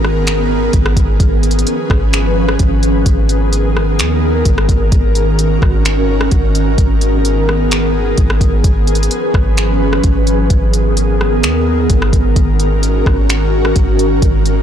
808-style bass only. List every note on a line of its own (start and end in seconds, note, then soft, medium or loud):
0.00 0.69 G#1 loud
0.74 0.96 G#1 loud
0.97 1.19 G#1 loud
1.20 1.65 G#1 loud
1.90 2.57 G#1 loud
2.60 3.04 G#1 loud
3.06 4.00 G#1 loud
3.99 4.43 D#2 loud
4.46 4.68 G#1 loud
4.69 4.91 G#1 loud
4.92 5.59 G#1 loud
5.62 6.29 G#1 loud
6.32 6.76 G#1 loud
6.78 8.14 G#1 loud
8.18 8.40 G#1 loud
8.41 8.63 G#1 loud
8.64 9.09 G#1 loud
9.34 10.01 G#1 loud
10.04 10.48 G#1 loud
10.50 11.45 G#1 loud
11.43 11.87 D#2 loud
11.90 12.12 G#1 loud
12.13 12.35 G#1 loud
12.36 13.03 G#1 loud
13.06 13.73 G#1 loud
13.76 14.21 G#1 loud
14.22 14.63 G#1 loud